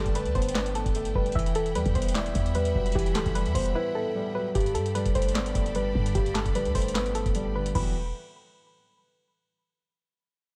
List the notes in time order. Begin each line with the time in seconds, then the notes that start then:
Already playing: D3 G3 A3 B3 D4 A4 B4 D5 G5 A5
0.06 G1, kick, closed hi-hat
0.15 A3 B4, closed hi-hat
0.26 D2, closed hi-hat
0.35 G1 B3 C5, kick, closed hi-hat
0.42 closed hi-hat
0.49 closed hi-hat
0.55 D4 B4, snare, clap, closed hi-hat
0.66 closed hi-hat
0.75 B3 A4, closed hi-hat
0.86 G1, kick, closed hi-hat
0.95 A3, closed hi-hat
1.05 closed hi-hat
1.15 G1 G3 B4, kick
1.26 closed hi-hat
1.32 E1 E3 E5 F#5 B5, kick, closed hi-hat
1.39 closed hi-hat
1.46 closed hi-hat
1.55 A4, closed hi-hat
1.66 closed hi-hat
1.75 E2 G3 B4, closed hi-hat
1.86 E2, kick, closed hi-hat
1.95 E1 B3 C5, kick, closed hi-hat
2.02 closed hi-hat
2.08 closed hi-hat
2.15 E4 D5, snare, clap, closed hi-hat
2.26 closed hi-hat
2.35 E2 B3, kick, closed hi-hat
2.46 closed hi-hat
2.55 G3 B4, closed hi-hat
2.65 closed hi-hat
2.75 E1 F#3, kick
2.86 closed hi-hat
2.92 E1 E3 G4, kick, closed hi-hat
2.99 closed hi-hat
3.06 closed hi-hat
3.15 D1 A4, snare, clap, closed hi-hat
3.26 E1, kick, closed hi-hat
3.35 G3 B4, closed hi-hat
3.46 E2, closed hi-hat
3.55 E1 B3 C5, kick, closed hi-hat, open hi-hat
3.66 closed hi-hat
3.75 E4 B4
3.95 B3 A4
4.15 G3
4.35 F#3 B4
4.55 G1 G2 G4 A4 D5 G5 B5, kick, closed hi-hat
4.60 closed hi-hat
4.66 closed hi-hat
4.75 G2 A4, closed hi-hat
4.86 closed hi-hat
4.95 G3 B4, closed hi-hat
5.06 G1, kick, closed hi-hat
5.15 A3 C5, kick, closed hi-hat
5.22 closed hi-hat
5.28 closed hi-hat
5.35 B3 D5, snare, clap, closed hi-hat
5.46 closed hi-hat
5.55 G1 A3, kick, closed hi-hat
5.66 closed hi-hat
5.75 G3 B4, closed hi-hat
5.95 G2 D3, kick
6.06 closed hi-hat
6.15 G1 G2 G4, kick, closed hi-hat
6.26 closed hi-hat
6.35 A4, snare, clap, closed hi-hat
6.46 G1, kick, closed hi-hat
6.55 G3 B4, closed hi-hat
6.65 D2, closed hi-hat
6.75 G1 A3 C5, kick, closed hi-hat, open hi-hat
6.82 closed hi-hat
6.88 closed hi-hat
6.95 B3 B4, snare, clap, closed hi-hat
7.06 closed hi-hat
7.15 A3 A4, closed hi-hat
7.26 G1, kick, closed hi-hat
7.35 G3, closed hi-hat
7.55 D3 B4
7.66 closed hi-hat
7.75 E1 E3 F#3 G3 B3 F#4 B4 E5 G5, kick, crash